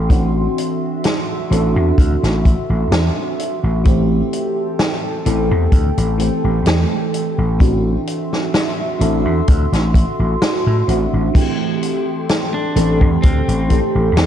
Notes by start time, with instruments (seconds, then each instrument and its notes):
Already playing: slap bass A1, fm electric piano E3 A3 C4 G4, ambient pad C6
0.09 fm electric piano E3 C4 D4 F#4, ambient pad F#4 E5, kick, closed hi-hat
0.58 closed hi-hat
1.04 snare, closed hi-hat
1.50 slap bass A1, fm electric piano E3 C4 D4 A4, closed hi-hat
1.76 slap bass E2
1.98 slap bass D2, kick, closed hi-hat
2.23 slap bass A1, snare, closed hi-hat
2.45 kick, closed hi-hat
2.70 slap bass A1
2.91 slap bass E2, snare, closed hi-hat
3.39 closed hi-hat
3.63 slap bass A1
3.84 fm electric piano E3 A3 C4 G4, ambient pad A4 G5, kick, closed hi-hat
4.33 closed hi-hat
4.79 snare, closed hi-hat
5.25 slap bass A1, fm electric piano E3 A3 C4 A4, closed hi-hat
5.51 slap bass E2
5.72 slap bass D2, kick, closed hi-hat
5.98 slap bass A1, closed hi-hat
6.18 fm electric piano E3 A3 C4 G4, closed hi-hat
6.44 slap bass A1
6.66 slap bass E2, snare, closed hi-hat
7.14 closed hi-hat
7.38 slap bass A1
7.59 fm electric piano E3 C4 D4 F#4, ambient pad F#4 E5 C6, kick, closed hi-hat
8.07 closed hi-hat
8.33 snare
8.54 snare, closed hi-hat
8.99 slap bass A1, fm electric piano E3 C4 D4 A4, closed hi-hat
9.25 slap bass E2
9.48 slap bass D2, kick, closed hi-hat
9.72 slap bass A1, snare, closed hi-hat
9.94 kick, closed hi-hat
10.19 slap bass A1
10.42 snare, closed hi-hat
10.67 slap bass A2
10.87 slap bass A1, fm electric piano E3 C4 D4 F#4, closed hi-hat
11.13 slap bass A1
11.33 fm electric piano E3 A3 C4 G4, ambient pad A4 G5 C6, kick, closed hi-hat, crash
11.83 closed hi-hat
12.29 snare, closed hi-hat
12.54 lead electric guitar D4
12.75 slap bass A1, fm electric piano E3 A3 C4 A4, closed hi-hat
13.01 slap bass E2, kick
13.22 slap bass D2, lead electric guitar C4, kick, closed hi-hat
13.48 slap bass A1, closed hi-hat
13.68 fm electric piano E3 A3 C4 G4, kick, closed hi-hat
13.95 slap bass A1
14.16 slap bass E2, snare, closed hi-hat